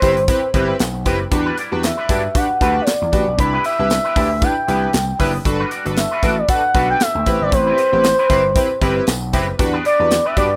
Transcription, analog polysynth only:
0.02 C4 E4 G4 B4
0.28 C4 E4 G4 B4
0.54 C4 E4 G4 B4
1.06 C4 E4 G4 B4
1.31 D4 F#4 G4 B4
1.72 D4 F#4 G4 B4
2.09 D4 F#4 G4 B4
2.35 D4 F#4 G4 B4
2.61 D4 F#4 G4 B4
3.12 D4 F#4 G4 B4
3.38 D4 E4 G4 B4
3.79 D4 E4 G4 B4
4.16 D4 E4 G4 B4
4.42 D4 E4 G4 B4
4.68 D4 E4 G4 B4
5.19 D4 E4 G4 B4
5.45 D4 F#4 A4 B4
5.85 D4 F#4 A4 B4
6.23 D4 F#4 A4 B4
6.48 D4 F#4 A4 B4
6.75 D4 F#4 A4 B4
7.26 C4 E4 G4 B4
7.92 C4 E4 G4 B4
8.30 C4 E4 G4 B4
8.56 C4 E4 G4 B4
8.81 C4 E4 G4 B4
9.33 C4 E4 G4 B4
9.59 D4 F#4 G4 B4
9.99 D4 F#4 G4 B4
10.36 D4 F#4 G4 B4

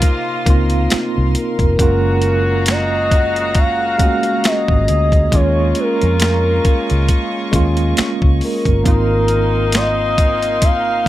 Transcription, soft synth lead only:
Already playing: A#4
1.37 A#4
2.70 D#5
3.58 F5
4.47 D#5
5.35 C#5
5.80 A#4
8.44 A#4
9.76 D#5
10.64 F5

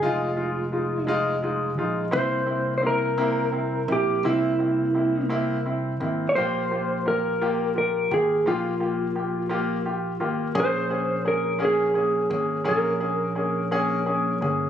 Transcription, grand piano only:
0.02 G#3 D#4 F4
0.36 G#3 D#4 F4
0.72 G#3 D#4 F4
1.07 G#3 D#4 F4
1.43 G#3 D#4 F4
1.78 G#3 D#4 F4
2.11 A#3 C4 E4
2.46 A#3 C4 E4
2.82 A#3 C4 E4
3.18 A#3 C4 E4
3.52 C4 E4
3.88 A#3 C4 E4
4.24 A#3 C4 E4
4.59 A#3 C4 E4
4.94 A#3 C4 E4
5.29 A#3 C4 E4
5.66 C4 E4
6.00 A#3 C4 E4
6.36 A#3 F4 G4
6.71 A#3 F4 G4
7.06 A#3 F4 G4
7.41 A#3 F4 G4
7.75 F4 G4
8.11 A#3 F4 G4
8.46 A#3 F4 G4
8.80 A#3 F4 G4
9.16 A#3 F4 G4
9.49 A#3 F4 G4
9.86 F4 G4
10.20 A#3 F4 G4
10.55 A#3 C#4 G#4
10.89 A#3 C#4 G#4
11.25 A#3 C#4 G#4
11.59 A#3 C#4 G#4
11.94 A#3 C#4 G#4
12.30 A#3 C#4 G#4
12.65 A#3 C#4 G#4
13.00 A#3 C#4 G#4
13.35 A#3 C#4 G#4
13.71 A#3 C#4 G#4
14.06 A#3 C#4 G#4
14.41 A#3 C#4 G#4

